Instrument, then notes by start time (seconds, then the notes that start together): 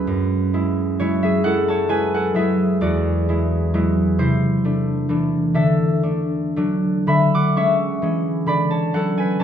harp
Already playing: F#3 G#3 C#4 E4 F#4 G#4 B4 C#5 D5
0.07 F#2
0.54 G#3 E4
1.00 F#3 G#3 E4 C#5
1.23 G#4 E5
1.44 F#3 G#3 E4 A4 F#5
1.68 C#5 A5
1.89 G#3 E4 B4 G#5
2.14 A4 F#5
2.34 F#3 G#3 E4 E5
2.39 G#4
2.81 E2 F#4 D5
3.29 G#3 E4
3.74 F#3 G#3 E4
4.19 C3 E4 C5
4.65 A3 D4
5.09 E3 A3 D4
5.54 D3 A4 E5
6.03 A3 D4
6.56 F#3 A3 D4
7.07 D3 E5 B5
7.35 F#5 D6
7.56 G#3 C#4 E5 C#6
8.02 E3 G#3 C#4
8.46 D3 D5 B5
8.71 C#5 A5
8.94 F#3 C#4 A4 F#5
9.18 B4 G#5
9.39 E3 F#3 A5